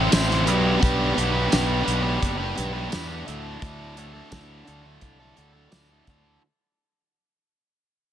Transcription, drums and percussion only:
0.12 snare, closed hi-hat, tambourine
0.31 snare
0.47 closed hi-hat
0.83 kick, closed hi-hat
1.18 closed hi-hat
1.52 snare, closed hi-hat, tambourine
1.88 closed hi-hat
2.23 kick, closed hi-hat
2.58 closed hi-hat
2.92 snare, closed hi-hat, tambourine
3.28 closed hi-hat
3.62 kick, closed hi-hat
3.97 closed hi-hat
4.32 kick, snare, closed hi-hat, tambourine
4.67 closed hi-hat
5.01 kick, closed hi-hat
5.37 closed hi-hat
5.72 snare, closed hi-hat, tambourine
6.07 kick, closed hi-hat

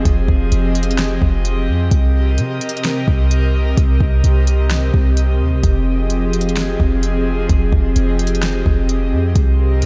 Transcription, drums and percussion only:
0.05 kick, closed hi-hat
0.28 kick
0.52 closed hi-hat
0.75 closed hi-hat
0.83 closed hi-hat
0.91 closed hi-hat
0.98 snare, closed hi-hat
1.22 kick
1.45 closed hi-hat
1.91 kick, closed hi-hat
2.38 closed hi-hat
2.61 closed hi-hat
2.69 closed hi-hat
2.77 closed hi-hat
2.84 snare, closed hi-hat
3.08 kick
3.31 closed hi-hat
3.77 kick, closed hi-hat
4.00 kick
4.24 closed hi-hat
4.47 closed hi-hat
4.70 snare, closed hi-hat
4.94 kick
5.17 closed hi-hat
5.63 kick, closed hi-hat
6.10 closed hi-hat
6.33 closed hi-hat
6.41 closed hi-hat
6.49 closed hi-hat
6.56 snare, closed hi-hat
6.80 kick
7.03 closed hi-hat
7.49 kick, closed hi-hat
7.73 kick
7.96 closed hi-hat
8.19 closed hi-hat
8.27 closed hi-hat
8.35 closed hi-hat
8.42 snare, closed hi-hat
8.66 kick
8.89 closed hi-hat
9.36 kick, closed hi-hat
9.82 closed hi-hat

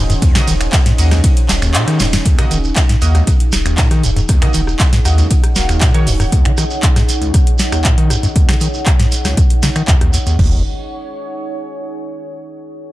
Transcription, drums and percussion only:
0.10 closed hi-hat, shekere
0.22 kick, closed hi-hat, ride, shekere
0.35 finger snap, cross-stick, snare, closed hi-hat
0.47 open hi-hat, ride, shekere
0.61 finger snap, closed hi-hat, shekere
0.73 kick, cross-stick, snare, clap, closed hi-hat, ride, shekere
0.86 snare, closed hi-hat
0.98 snare, open hi-hat, ride, shekere
1.11 cross-stick, snare, closed hi-hat, shekere
1.24 kick, closed hi-hat, ride, shekere
1.37 closed hi-hat
1.49 cross-stick, snare, clap, open hi-hat, ride, shekere
1.62 finger snap, closed hi-hat, shekere
1.74 clap, closed hi-hat, ride, shekere
1.88 cross-stick, snare, closed hi-hat
1.99 snare, open hi-hat, ride, shekere
2.13 snare, closed hi-hat, ride, shekere
2.25 kick, closed hi-hat, ride, shekere
2.39 finger snap, cross-stick, snare, closed hi-hat
2.51 open hi-hat, ride, shekere
2.64 shekere
2.76 kick, cross-stick, snare, clap, closed hi-hat, ride, shekere
2.89 snare, closed hi-hat
3.02 open hi-hat, ride, shekere
3.15 cross-stick, snare, closed hi-hat, shekere
3.27 kick, closed hi-hat, ride, shekere
3.40 closed hi-hat
3.52 cross-stick, snare, open hi-hat, ride, shekere
3.66 finger snap, closed hi-hat, ride, shekere
3.78 kick, snare, clap, closed hi-hat, ride, shekere
3.91 cross-stick, snare, closed hi-hat
4.03 open hi-hat, ride, shekere
4.16 closed hi-hat, shekere
4.28 kick, cross-stick, closed hi-hat, ride, shekere
4.42 finger snap, snare, closed hi-hat
4.53 open hi-hat, ride, shekere
4.67 cross-stick, shekere
4.79 kick, snare, clap, closed hi-hat, ride, shekere
4.93 snare, closed hi-hat
5.05 cross-stick, snare, open hi-hat, ride, shekere
5.18 snare, closed hi-hat, shekere
5.30 kick, closed hi-hat, ride, shekere
5.44 cross-stick, closed hi-hat
5.56 snare, open hi-hat, ride, shekere
5.69 finger snap, snare, closed hi-hat, shekere
5.81 kick, cross-stick, snare, clap, closed hi-hat, ride, shekere
5.94 closed hi-hat
6.07 open hi-hat, shekere
6.20 cross-stick, closed hi-hat, shekere
6.32 kick, closed hi-hat, shekere
6.45 finger snap, closed hi-hat
6.57 cross-stick, open hi-hat, shekere
6.71 shekere
6.82 kick, clap, closed hi-hat, shekere
6.96 cross-stick, snare, closed hi-hat
7.09 open hi-hat, shekere
7.22 closed hi-hat, shekere
7.34 kick, cross-stick, closed hi-hat, shekere
7.47 closed hi-hat
7.59 snare, open hi-hat, shekere
7.72 finger snap, cross-stick, closed hi-hat, shekere
7.84 kick, clap, closed hi-hat, shekere
7.98 closed hi-hat
8.10 cross-stick, open hi-hat, shekere
8.23 closed hi-hat, shekere
8.36 kick, closed hi-hat, shekere
8.49 finger snap, cross-stick, snare, closed hi-hat
8.61 open hi-hat, shekere
8.74 shekere
8.86 kick, cross-stick, clap, closed hi-hat, shekere
9.00 snare, closed hi-hat
9.12 open hi-hat, shekere
9.25 cross-stick, snare, closed hi-hat, shekere
9.37 kick, closed hi-hat, shekere
9.50 closed hi-hat
9.63 cross-stick, snare, open hi-hat, shekere
9.75 finger snap, closed hi-hat, shekere
9.88 kick, clap, closed hi-hat, shekere
10.01 cross-stick, closed hi-hat
10.13 open hi-hat, shekere
10.27 closed hi-hat, shekere
10.39 kick, floor tom, crash

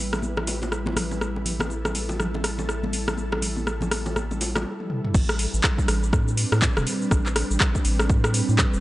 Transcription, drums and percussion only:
0.13 cross-stick, low bongo, muted conga, shaker
0.22 high conga, shaker
0.37 cross-stick, low bongo, muted conga
0.47 open hi-hat, high bongo, shaker
0.62 high bongo, low bongo, muted conga, shaker
0.72 cross-stick, shaker
0.86 high bongo, low bongo, high conga
0.96 cross-stick, open hi-hat, muted conga, low conga, shaker
1.11 low bongo, shaker
1.21 cross-stick, muted conga, shaker
1.36 low bongo
1.46 open hi-hat, muted conga, low conga, shaker
1.59 cross-stick, low bongo, high conga, shaker
1.70 muted conga, shaker
1.85 cross-stick, low bongo, shaker
1.95 open hi-hat, high conga, shaker
2.09 high bongo, low bongo, muted conga, shaker
2.20 cross-stick, low conga, shaker
2.34 low bongo, muted conga
2.44 cross-stick, open hi-hat, shaker
2.59 low bongo, muted conga, high conga, shaker
2.69 cross-stick, shaker
2.83 low bongo, high conga
2.93 open hi-hat, muted conga, shaker
3.08 cross-stick, low bongo, shaker
3.17 muted conga, high conga, shaker
3.32 cross-stick, low bongo
3.42 open hi-hat, muted conga, low conga, shaker
3.56 low bongo, high conga, shaker
3.67 cross-stick, muted conga, shaker
3.81 low bongo, low conga, shaker
3.91 cross-stick, open hi-hat, high conga, shaker
4.06 high bongo, low bongo, muted conga, shaker
4.16 cross-stick, high conga, shaker
4.31 low bongo, muted conga, shaker
4.41 open hi-hat, high bongo, shaker
4.55 cross-stick, high bongo, low bongo, muted conga, high conga, shaker
4.80 high tom
4.90 mid tom
5.05 mid tom
5.14 kick, crash, shaker
5.29 cross-stick, shaker
5.39 open hi-hat, shaker
5.54 shaker
5.64 kick, cross-stick, clap, shaker
5.78 kick, shaker
5.88 cross-stick, open hi-hat, shaker
6.03 shaker
6.13 kick, cross-stick, shaker
6.28 shaker
6.37 open hi-hat, shaker
6.52 cross-stick, shaker
6.62 kick, clap, shaker
6.77 cross-stick, mid tom, shaker
6.87 open hi-hat, shaker
7.02 shaker
7.11 kick, cross-stick, shaker
7.26 clap, shaker
7.36 cross-stick, open hi-hat, shaker
7.51 shaker
7.60 kick, cross-stick, clap, shaker
7.75 kick, shaker
7.85 open hi-hat, shaker
7.99 cross-stick, shaker
8.10 kick, shaker
8.24 cross-stick, shaker
8.34 open hi-hat, shaker
8.49 shaker
8.59 kick, cross-stick, clap, shaker
8.74 shaker

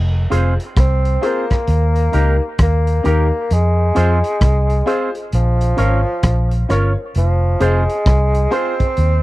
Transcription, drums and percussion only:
0.32 closed hi-hat
0.60 closed hi-hat
0.76 kick, cross-stick, closed hi-hat
1.05 closed hi-hat
1.23 closed hi-hat
1.50 kick, cross-stick, closed hi-hat
1.67 closed hi-hat
1.96 closed hi-hat
2.13 closed hi-hat
2.58 kick, cross-stick, closed hi-hat
2.87 closed hi-hat
3.05 closed hi-hat
3.50 closed hi-hat
3.96 closed hi-hat
4.24 closed hi-hat
4.41 kick, cross-stick, closed hi-hat
4.70 closed hi-hat
4.87 closed hi-hat
5.15 closed hi-hat
5.32 closed hi-hat
5.61 closed hi-hat
5.78 closed hi-hat
6.23 kick, cross-stick, closed hi-hat
6.51 closed hi-hat
6.70 cross-stick, closed hi-hat
7.15 closed hi-hat
7.60 closed hi-hat
7.89 closed hi-hat
8.06 kick, cross-stick, closed hi-hat
8.35 closed hi-hat
8.52 closed hi-hat
8.80 kick, closed hi-hat
8.97 closed hi-hat

